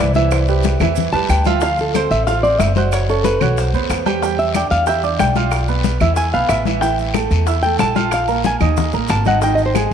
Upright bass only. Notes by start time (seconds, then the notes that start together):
0.00 C2
0.80 E2
1.13 E2
1.29 D2
2.10 A1
2.59 F#1
3.41 B1
3.73 D#2
3.90 E2
4.71 E2
5.20 B1
6.01 E2
6.34 B1
6.49 A1
7.31 E2
7.79 A#1
8.61 D#2
8.94 A1
9.10 G#1